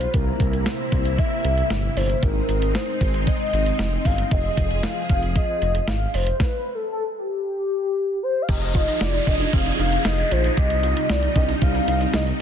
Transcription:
Already playing: G3 F4 B4 C5
0.01 closed hi-hat
0.14 C2 C3 A#3 E4 A#4, kick, closed hi-hat
0.40 C2, kick, closed hi-hat
0.53 closed hi-hat
0.66 C5, snare, closed hi-hat
0.92 C2, kick, closed hi-hat
1.05 closed hi-hat
1.18 E5, kick, closed hi-hat
1.44 C2, closed hi-hat
1.58 closed hi-hat
1.70 G1, snare, closed hi-hat
1.97 G1 C5, open hi-hat
2.09 closed hi-hat
2.23 G#1 G#3 C4 D#4 A#4, kick, closed hi-hat
2.49 G#1, closed hi-hat
2.62 closed hi-hat
2.75 C5, snare, closed hi-hat
3.01 G#1, kick, closed hi-hat
3.14 closed hi-hat
3.27 D#5, kick, closed hi-hat
3.53 G#1, closed hi-hat
3.66 closed hi-hat
3.79 F1, snare, closed hi-hat
4.05 G1 F5, kick, open hi-hat
4.18 closed hi-hat
4.31 F1 F3 G#4 D#5, kick, closed hi-hat
4.57 F1, kick, closed hi-hat
4.71 closed hi-hat
4.83 F5, snare, closed hi-hat
5.09 F1 F5, kick, closed hi-hat
5.23 closed hi-hat
5.36 D#5, kick, closed hi-hat
5.62 F1, closed hi-hat
5.75 closed hi-hat
5.88 G#1 F5, snare, closed hi-hat
6.14 F1 C5, open hi-hat
6.27 closed hi-hat
6.40 B4, kick, snare
6.75 A4
6.92 A4
7.18 G4
8.23 C5
8.42 F5
8.49 F1 F3 D#4 G4 G#4 D#5, kick, closed hi-hat, crash, downlifter
8.62 closed hi-hat
8.75 F4, kick, closed hi-hat
8.88 D#4, closed hi-hat
9.01 F1 F4 D5, snare, closed hi-hat
9.14 D#4, closed hi-hat
9.27 F1 D4 D#5, kick, closed hi-hat
9.40 D4, closed hi-hat
9.53 F1 C4 F5, kick, closed hi-hat
9.66 D#4, closed hi-hat
9.79 F1 D#4 F5, closed hi-hat
9.92 closed hi-hat
10.05 F1 D#4 D#5, snare, closed hi-hat
10.18 closed hi-hat
10.31 A#1 F4 C5, closed hi-hat
10.44 closed hi-hat
10.57 C2 C3 G3 D#4 G4 D#5, kick, closed hi-hat
10.70 closed hi-hat
10.83 F4, closed hi-hat
10.97 D#4, closed hi-hat
11.09 C2 F4 D5, snare, closed hi-hat
11.23 D#4, closed hi-hat
11.36 C2 D4 D#5, kick, closed hi-hat
11.49 D4, closed hi-hat
11.62 C2 C4 F5, kick, closed hi-hat
11.75 D#4, closed hi-hat
11.88 C2 D#4 F5, closed hi-hat
12.01 closed hi-hat
12.14 C2 D#4 D#5, snare, closed hi-hat
12.27 closed hi-hat

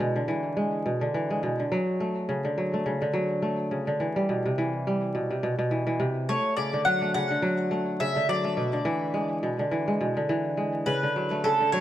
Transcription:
Already playing: G#3
0.00 B2
0.16 D3
0.28 E3
0.57 G#3
0.86 B2
1.01 D3
1.14 E3
1.30 G#3
1.43 B2
1.60 D3
1.72 F#3
2.00 A3
2.29 C#3
2.45 D3
2.58 F#3
2.74 A3
2.86 C#3
3.02 D3
3.14 F#3
3.42 A3
3.71 C#3
3.87 D3
4.00 E3
4.16 G3
4.29 B2
4.45 C3
4.58 E3
4.87 G3
5.15 B2
5.31 C3
5.43 B2
5.59 B2
5.71 E3
5.87 E3
6.00 C3
6.29 A3 C#5
6.57 C#3 D5
6.73 D3
6.85 F#3 F#5
7.02 A3
7.14 C#3 F#5
7.30 D3
7.42 F#3
7.71 A3
8.00 C#3 E5
8.16 D3
8.29 F#3 D5
8.44 A3
8.57 B2
8.73 D3
8.85 E3
9.14 G#3
9.43 B2
9.59 D3
9.71 E3
9.88 G#3
10.01 B2
10.17 D3
10.29 E3
10.57 G#3
10.86 C#3 B4
11.03 D3
11.16 F#3
11.31 A3
11.44 C#3 A4
11.60 D3
11.72 F#3 C#5

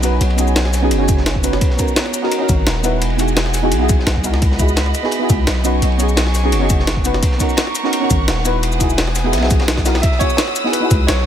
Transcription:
Already playing: B1 D#5, sub drop
0.02 B3 C#4 D#4 F#4 B4 C#5 G#5, closed hi-hat, ride, cabasa
0.21 B1, closed hi-hat, ride
0.30 ride
0.36 B3 C#4 D#4 F#4, closed hi-hat, ride, cabasa
0.41 G#4
0.48 cabasa
0.56 snare, closed hi-hat, ride
0.65 snare
0.74 snare, open hi-hat, ride, cabasa
0.82 B3 C#4 D#4 F#4 G#4
0.91 F#1, closed hi-hat, ride
0.98 B3 C#4 D#4 F#4
1.03 G#4
1.08 kick, closed hi-hat, ride, cabasa
1.17 snare
1.26 snare, closed hi-hat, ride
1.35 kick
1.42 B3 C#4 D#4 F#4 B4, closed hi-hat, ride, cabasa
1.53 snare
1.61 B3 F#5 A#5, kick, closed hi-hat, ride
1.70 snare
1.76 B3 C#4 D#4 F#4, kick, closed hi-hat, ride, cabasa
1.81 A#4
1.88 cabasa
1.96 snare, closed hi-hat, ride
2.06 snare
2.13 closed hi-hat, ride, cabasa
2.22 B3 C#4 D#4 F#4 A#4, snare
2.32 closed hi-hat, ride
2.38 B3 C#4 D#4 F#4
2.43 A#4
2.49 G#1, kick, closed hi-hat, ride, cabasa
2.66 D#1, snare, closed hi-hat, ride
2.76 snare
2.83 B3 D#4 E4 F#4 B4, closed hi-hat, ride, cabasa
3.01 E1 D#5 G#5, closed hi-hat, ride
3.10 ride
3.16 B3 D#4 E4 F#4, closed hi-hat, ride, cabasa
3.22 G#4
3.28 cabasa
3.37 snare, closed hi-hat, ride
3.46 snare
3.54 snare, open hi-hat, ride, cabasa
3.62 B3 D#4 E4 F#4 G#4
3.71 B1, closed hi-hat, ride
3.79 B3 D#4 E4 F#4
3.84 G#4
3.89 kick, closed hi-hat, ride, cabasa
3.99 snare
4.07 B1, snare, closed hi-hat, ride
4.16 kick
4.23 C#2 B3 D#4 E4 F#4 A#4, closed hi-hat, ride, cabasa
4.34 snare
4.42 B5, kick, closed hi-hat, ride
4.51 snare
4.57 B3 D#4 E4 F#4, kick, closed hi-hat, ride, cabasa
4.62 G#4
4.69 cabasa
4.76 snare, closed hi-hat, ride
4.86 snare
4.94 closed hi-hat, ride, cabasa
5.03 B3 D#4 E4 F#4 G#4, snare
5.11 closed hi-hat, ride
5.19 B3 D#4 E4 F#4
5.24 G#4
5.30 C#2, kick, closed hi-hat, ride, cabasa
5.47 B1, snare, closed hi-hat, ride
5.56 snare
5.63 B3 C#4 D#4 F#4 B4 G#5 C#6, closed hi-hat, ride, cabasa
5.82 B1, closed hi-hat, ride
5.92 ride
5.97 B3 C#4 D#4 F#4, closed hi-hat, ride, cabasa
6.03 G#4
6.09 cabasa
6.17 snare, closed hi-hat, ride
6.26 snare
6.34 snare, open hi-hat, ride, cabasa
6.43 B3 C#4 D#4 F#4 G#4
6.52 F#1, closed hi-hat, ride
6.59 B3 C#4 D#4 F#4
6.64 G#4
6.70 kick, closed hi-hat, ride, cabasa
6.80 snare
6.87 snare, closed hi-hat, ride
6.97 kick
7.04 B3 C#4 D#4 F#4 B4, closed hi-hat, ride, cabasa
7.14 snare
7.23 F#5 A#5 C#6, kick, closed hi-hat, ride
7.32 snare
7.37 B3 C#4 D#4 F#4, kick, closed hi-hat, ride, cabasa
7.43 A#4
7.50 cabasa
7.57 snare, closed hi-hat, ride
7.67 snare
7.75 closed hi-hat, ride, cabasa
7.83 B3 C#4 D#4 F#4 A#4, snare
7.93 closed hi-hat, ride
7.99 B3 C#4 D#4 F#4
8.05 A#4
8.10 G#1, kick, closed hi-hat, ride, cabasa
8.28 D#1, snare, closed hi-hat, ride
8.38 snare
8.44 B3 D#4 E4 F#4 B4, closed hi-hat, ride, cabasa
8.63 E1 G#5 D#6, closed hi-hat, ride
8.72 ride, cabasa
8.78 B3 D#4 E4 F#4, kick, closed hi-hat, ride, cabasa
8.83 G#4
8.90 cabasa
8.98 snare, closed hi-hat, ride
9.07 snare
9.16 snare, open hi-hat, ride, cabasa
9.24 B3 D#4 E4 F#4 G#4
9.33 B1, snare, closed hi-hat, ride
9.38 B3 D#4, snare, ride
9.42 E4 F#4 G#4, snare, ride
9.50 kick, closed hi-hat, ride, cabasa
9.60 snare, ride
9.68 snare, closed hi-hat
9.77 kick, snare, ride
9.84 B3 D#4 E4 F#4 A#4, snare, closed hi-hat, ride, cabasa
9.94 snare, ride
10.02 E5 F#5 B5 E6, kick, closed hi-hat, ride
10.12 snare
10.18 B3 D#4 E4 F#4 C#5, kick, closed hi-hat, ride, cabasa
10.23 G#4
10.30 cabasa
10.37 snare, closed hi-hat, ride
10.48 snare
10.56 closed hi-hat, ride, cabasa
10.64 B3 D#4 E4 F#4 G#4, snare
10.72 B4, closed hi-hat, ride
10.80 B3 D#4 E4 F#4
10.85 G#4
10.90 C#2, kick, closed hi-hat, ride, cabasa
11.07 B1 C#5, snare, closed hi-hat, ride
11.18 snare

